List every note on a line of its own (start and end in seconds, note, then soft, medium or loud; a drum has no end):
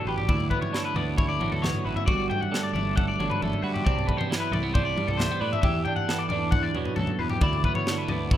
0.00 0.26 E2 medium
0.00 0.27 B2 soft
0.00 0.26 E3 medium
0.00 1.41 F#3 soft
0.00 0.32 D4 medium
0.05 0.27 A1 medium
0.05 0.27 G4 soft
0.05 0.17 B4 medium
0.17 0.29 G4 medium
0.17 floor tom medium
0.28 2.07 D2 medium
0.28 0.50 D2 medium
0.28 0.73 E4 medium
0.28 0.50 D5 medium
0.28 kick medium
0.28 floor tom medium
0.40 floor tom medium
0.50 0.96 B3 medium
0.50 0.61 B4 medium
0.50 kick medium
0.50 floor tom medium
0.61 0.84 C#5 medium
0.61 floor tom medium
0.61 mid tom medium
0.73 2.51 D3 medium
0.73 1.16 E4 soft
0.73 snare medium
0.85 0.96 B4 medium
0.95 1.37 D2 medium
0.95 1.63 B3 medium
0.95 1.17 D5 medium
0.95 floor tom medium
0.95 mid tom medium
1.18 1.85 E4 medium
1.18 1.28 C#5 medium
1.18 kick loud
1.18 floor tom medium
1.29 1.51 D5 medium
1.39 1.50 A1 medium
1.39 2.07 A2 soft
1.39 3.19 F#3 soft
1.39 mid tom medium
1.51 1.72 D2 medium
1.51 1.63 A4 medium
1.51 floor tom medium
1.62 2.30 B3 medium
1.62 1.85 C#5 medium
1.62 snare medium
1.62 floor tom medium
1.62 mid tom medium
1.75 floor tom medium
1.85 1.96 A1 medium
1.85 2.05 E4 soft
1.85 1.96 B4 medium
1.96 2.06 E5 medium
1.96 floor tom medium
2.06 2.29 G1 medium
2.06 3.83 G2 medium
2.06 2.52 F#4 medium
2.06 2.29 D5 medium
2.06 kick loud
2.06 floor tom medium
2.30 2.74 A3 soft
2.30 2.41 G5 medium
2.30 floor tom medium
2.41 2.63 F#5 medium
2.41 floor tom medium
2.52 3.19 D3 medium
2.52 2.95 A4 medium
2.52 snare medium
2.63 2.72 D5 medium
2.73 3.15 G1 medium
2.73 3.42 A3 medium
2.73 2.96 D5 medium
2.73 floor tom medium
2.73 mid tom medium
2.96 3.63 A4 medium
2.96 3.07 F#5 medium
2.96 kick medium
2.96 floor tom medium
3.08 3.30 D5 medium
3.19 3.29 G1 medium
3.19 3.84 D3 medium
3.19 5.01 F#3 soft
3.19 mid tom medium
3.30 3.41 B4 medium
3.30 floor tom medium
3.41 3.52 F#1 medium
3.41 3.87 A3 medium
3.41 3.62 A4 medium
3.41 floor tom medium
3.41 mid tom medium
3.53 floor tom medium
3.62 3.84 G2 medium
3.62 3.87 F#4 medium
3.62 3.74 B4 medium
3.74 3.85 G4 medium
3.74 floor tom medium
3.85 4.07 C2 medium
3.85 4.30 C3 medium
3.85 4.31 D4 medium
3.85 4.07 D5 medium
3.85 kick medium
3.85 floor tom medium
3.99 floor tom medium
4.06 4.18 A3 soft
4.06 4.17 B4 medium
4.06 kick medium
4.06 floor tom medium
4.17 4.51 B3 soft
4.17 4.40 C5 medium
4.17 floor tom medium
4.17 mid tom medium
4.30 5.90 E3 soft
4.30 4.75 E4 soft
4.30 snare medium
4.40 4.52 B4 medium
4.51 4.94 C2 medium
4.51 4.63 A3 medium
4.51 4.73 D5 medium
4.51 floor tom medium
4.51 mid tom medium
4.63 5.19 B3 soft
4.74 5.41 D4 medium
4.74 4.85 C5 medium
4.74 kick medium
4.74 floor tom medium
4.85 5.08 D5 medium
4.97 5.07 G2 medium
4.97 5.61 G2 soft
4.97 mid tom medium
5.07 5.29 C2 medium
5.07 5.19 A4 medium
5.07 floor tom medium
5.17 5.32 A3 medium
5.17 5.40 C5 medium
5.17 snare medium
5.17 floor tom medium
5.17 mid tom medium
5.31 5.64 B3 soft
5.31 floor tom medium
5.40 5.52 A2 medium
5.40 5.64 D4 soft
5.40 5.52 B4 medium
5.53 5.60 E5 medium
5.53 floor tom medium
5.62 6.97 E2 medium
5.62 5.84 E2 loud
5.62 6.09 G4 medium
5.62 5.84 E5 medium
5.62 kick medium
5.62 floor tom medium
5.85 6.31 D4 soft
5.85 5.95 G5 medium
5.85 floor tom medium
5.96 6.19 F#5 medium
5.96 floor tom medium
6.08 7.39 E3 medium
6.08 6.53 A4 medium
6.08 snare medium
6.19 6.28 D5 medium
6.29 6.72 E2 medium
6.29 7.46 D4 medium
6.29 6.52 D5 medium
6.29 floor tom medium
6.29 mid tom medium
6.51 6.63 F#5 medium
6.51 kick loud
6.51 floor tom medium
6.63 6.85 D5 medium
6.75 6.85 E2 medium
6.75 7.39 B2 medium
6.75 8.37 F#3 soft
6.75 mid tom medium
6.85 6.95 B4 medium
6.85 floor tom medium
6.96 7.08 D2 medium
6.96 7.20 F#2 medium
6.96 7.19 A4 medium
6.96 floor tom medium
6.96 mid tom medium
7.07 floor tom medium
7.19 7.40 E2 medium
7.19 7.42 E2 medium
7.19 7.30 B4 medium
7.30 7.42 G4 medium
7.30 floor tom medium
7.41 7.63 D2 medium
7.41 8.37 D2 medium
7.41 7.87 E4 medium
7.41 7.64 D5 medium
7.41 kick medium
7.41 floor tom medium
7.53 floor tom medium
7.64 8.11 B3 medium
7.64 7.75 B4 medium
7.64 kick medium
7.64 floor tom medium
7.75 7.98 C#5 medium
7.75 floor tom medium
7.75 mid tom medium
7.87 8.37 D3 medium
7.87 8.32 E4 soft
7.87 snare medium
7.98 8.09 B4 medium
8.08 8.37 D2 medium
8.08 8.37 B3 medium
8.08 8.31 D5 medium
8.08 floor tom medium
8.08 mid tom medium
8.31 8.37 E4 medium
8.31 8.37 C#5 medium
8.31 kick loud
8.31 floor tom medium